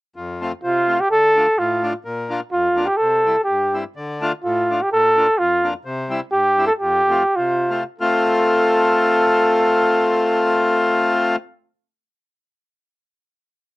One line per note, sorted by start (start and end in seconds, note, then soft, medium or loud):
0.16 0.52 F2 medium
0.41 0.52 A3 medium
0.41 0.52 C4 soft
0.41 0.52 F4 medium
0.64 1.00 C3 medium
0.64 1.02 F4 medium
0.87 0.98 A3 soft
0.87 0.99 C4 soft
0.87 0.99 F4 soft
1.00 1.10 G4 medium
1.11 1.47 D3 medium
1.11 1.60 A4 medium
1.36 1.46 A3 medium
1.36 1.46 D4 soft
1.36 1.47 F4 soft
1.58 1.94 A2 medium
1.58 1.94 F4 medium
1.82 1.93 A3 soft
1.82 1.93 D4 soft
1.82 1.93 F4 medium
2.05 2.41 A#2 medium
2.29 2.40 A#3 medium
2.29 2.40 D4 medium
2.29 2.40 F4 medium
2.52 2.88 F2 medium
2.52 2.87 F4 medium
2.76 2.87 A#3 soft
2.76 2.87 D4 soft
2.76 2.87 F4 soft
2.86 2.98 G4 medium
2.97 3.36 C3 medium
2.97 3.43 A4 medium
3.25 3.35 G3 soft
3.25 3.36 C4 soft
3.25 3.36 E4 soft
3.44 3.80 G4 medium
3.49 3.85 G2 soft
3.73 3.83 G3 soft
3.73 3.84 C4 soft
3.73 3.84 E4 soft
3.96 4.32 D3 medium
4.21 4.31 A3 medium
4.21 4.32 D4 medium
4.21 4.32 F4 medium
4.44 4.81 A2 medium
4.44 4.83 F4 medium
4.70 4.80 A3 soft
4.70 4.80 D4 soft
4.70 4.81 F4 soft
4.82 4.92 G4 medium
4.92 5.28 A#2 medium
4.92 5.40 A4 medium
5.17 5.27 A#3 soft
5.17 5.27 D4 soft
5.17 5.27 F4 medium
5.38 5.74 F2 medium
5.38 5.74 F4 medium
5.63 5.73 A#3 soft
5.63 5.73 D4 soft
5.63 5.74 F4 soft
5.85 6.21 C3 medium
6.09 6.20 G3 medium
6.09 6.20 C4 soft
6.09 6.20 E4 medium
6.32 6.70 G2 medium
6.32 6.66 G4 medium
6.57 6.69 G3 soft
6.57 6.69 C4 soft
6.57 6.69 E4 medium
6.67 6.73 A4 medium
6.79 7.24 F2 medium
6.79 7.37 G4 medium
7.10 7.22 A3 soft
7.10 7.23 C4 soft
7.10 7.23 F4 medium
7.36 7.84 C3 medium
7.36 7.84 F4 medium
7.70 7.83 A3 soft
7.70 7.83 C4 soft
7.70 7.84 F4 soft
8.00 11.36 A3 medium
8.00 11.36 C4 medium
8.00 11.36 F4 medium
8.00 11.35 A4 medium